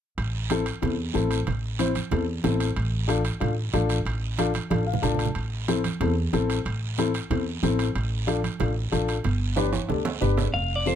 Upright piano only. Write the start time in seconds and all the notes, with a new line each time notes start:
0.51 C4 E4 A4
0.82 C4 E4 A4
1.14 C4 E4 A4
1.79 C4 E4 C5
2.12 C4 E4 A4
2.44 C4 E4 A4
3.08 D4 F4 A4
3.40 D4 F4 A4
3.73 D4 F4 A4
4.38 D4 F4 A4
4.70 D4 F4 A4
4.87 F5
5.02 D4 F4 A4 A5
5.68 C4 E4 A4
6.01 C4 E4 A4
6.33 C4 E4 A4
6.98 C4 E4 A4
7.31 C4 E4 A4
7.63 C4 E4 A4
8.27 D4 F4 A4
8.60 D4 F4 A4
8.92 D4 F4 A4
9.56 D4 G4 B4
9.88 D4 G4 A4
10.21 D4 G4 B4
10.86 C4 F4 A4